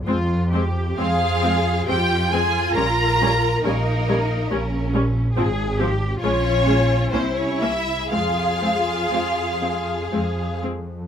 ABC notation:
X:1
M:3/4
L:1/16
Q:1/4=67
K:Fm
V:1 name="Violin section"
z4 f4 g2 a2 | b4 B6 z2 | z4 d4 c d =e2 | f8- f2 z2 |]
V:2 name="Cello section"
F2 G2 A4 F4- | F4 E4 D4 | A2 G2 F4 =E4 | A8- A2 z2 |]
V:3 name="Violin section"
z4 F4 G2 A2 | B4 B,6 z2 | z4 D4 C D =E2 | F8- F2 z2 |]
V:4 name="Viola section"
[A,C]2 [A,C]2 [A,C]2 [A,C]2 [A,C]2 [A,C]2 | [G,D]2 [G,D]2 [G,D]2 [G,D]2 [G,D]2 [G,D]2 | [F,C]2 [F,C]2 [A,D]2 [A,D]2 [B,D]2 [B,D]2 | [A,C]2 [A,C]2 [A,C]2 [A,C]2 [A,C]2 [A,C]2 |]
V:5 name="Double bass section" clef=bass
F,,4 F,,4 F,,4 | B,,,4 B,,,4 B,,,4 | A,,,4 B,,,4 C,,4 | F,,4 F,,4 F,,4 |]